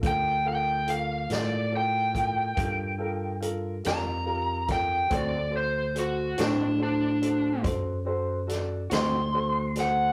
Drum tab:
HH |x-xx-xx-xx-x|x-xx-xx-xx-x|
SD |---o-----o-o|---o----oo-o|
BD |o----oo----o|o-----o-----|